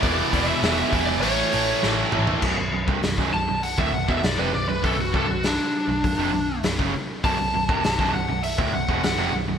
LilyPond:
<<
  \new Staff \with { instrumentName = "Lead electric guitar" } { \time 4/4 \key b \minor \tempo 4 = 100 d''8. e''4 d''16 cis''4 r4 | r4. a''8 fis''16 e''16 fis''16 e''16 d''16 b'16 d''16 b'16 | a'16 fis'16 a'16 fis'16 d'2 r4 | a''4. fis''8 e''16 e''16 fis''8 fis''8 r8 | }
  \new Staff \with { instrumentName = "Distorted electric guitar" } { \clef bass \time 4/4 \key b \minor <e, b, e>2 <a, e a>2 | r1 | r1 | r1 | }
  \new Staff \with { instrumentName = "Overdriven electric guitar" } { \clef bass \time 4/4 \key b \minor <e, b, e>8 <e, b, e>8 <e, b, e>8 <e, b, e>8 <a, e a>8 <a, e a>8 <a, e a>8 <a, e a>8 | <b,, fis,>16 <b,, fis,>16 <b,, fis,>16 <c, g,>16 <b,, fis,>16 <b,, fis,>16 <b,, fis,>16 <b,, fis,>8 <d, a,>16 <b,, fis,>16 <e, b,>16 <b,, fis,>16 <eis, c>16 <b,, fis,>16 <b,, fis,>16 | <b,, fis,>16 <b,, fis,>16 <c, g,>16 <b,, fis,>8 r8 <b,, fis,>16 <b,, fis,>16 <eis, c>16 <b,, fis,>8 <b,, fis,>16 <fis, cis>16 r8 | <b,, fis,>16 <b,, fis,>16 <b,, fis,>16 <c, g,>16 <b,, fis,>16 <b,, fis,>16 <b,, fis,>16 <b,, fis,>8 <d, a,>16 <b,, fis,>16 <e, b,>16 <b,, fis,>16 <eis, c>16 <b,, fis,>16 <b,, fis,>16 | }
  \new Staff \with { instrumentName = "Overdriven electric guitar" } { \clef bass \time 4/4 \key b \minor <e, b, e>8 <e, b, e>8 <e, b, e>8 <e, b, e>8 <a, e a>8 <a, e a>8 <a, e a>8 <a, e a>8 | <b,, fis,>16 <b,, fis,>16 <b,, fis,>16 <c, g,>16 <b,, fis,>16 <b,, fis,>16 <b,, fis,>16 <b,, fis,>8 <d, a,>16 <b,, fis,>16 <e, b,>16 <b,, fis,>16 <eis, c>16 <b,, fis,>16 <b,, fis,>16 | <b,, fis,>16 <b,, fis,>16 <c, g,>16 <b,, fis,>8 r8 <b,, fis,>16 <b,, fis,>16 <eis, c>16 <b,, fis,>8 <b,, fis,>16 <fis, cis>16 r8 | <b,, fis,>16 <b,, fis,>16 <b,, fis,>16 <c, g,>16 <b,, fis,>16 <b,, fis,>16 <b,, fis,>16 <b,, fis,>8 <d, a,>16 <b,, fis,>16 <e, b,>16 <b,, fis,>16 <eis, c>16 <b,, fis,>16 <b,, fis,>16 | }
  \new Staff \with { instrumentName = "Picked electric bass" } { \clef bass \time 4/4 \key b \minor e,,8 e,,8 e,,8 e,,8 a,,8 a,,8 a,,8 a,,8 | b,,,16 b,,,16 b,,,16 c,,16 b,,,16 b,,,16 b,,,16 b,,,8 d,,16 b,,,16 e,,16 b,,,16 eis,,16 b,,,16 b,,,16 | b,,,16 b,,,16 c,,16 b,,,8 r8 b,,,16 b,,,16 eis,,16 b,,,8 b,,,16 fis,,16 r8 | b,,,16 b,,,16 b,,,16 c,,16 b,,,16 b,,,16 b,,,16 b,,,8 d,,16 b,,,16 e,,16 b,,,16 eis,,16 b,,,16 b,,,16 | }
  \new DrumStaff \with { instrumentName = "Drums" } \drummode { \time 4/4 <hho bd>8 <hho bd>8 <hho sn>8 <hho bd>8 hho8 hho8 sn8 toml16 tomfh16 | <cymc bd>8. bd16 <hho sn>16 bd8. hho16 bd8 bd16 <hho sn>4 | <hho bd>8 bd8 <hho sn>4 <hho bd>4 <hho sn>16 bd8. | <hho bd>8. bd16 <hho sn>16 bd8. hho16 bd8 bd16 <hho sn>4 | }
>>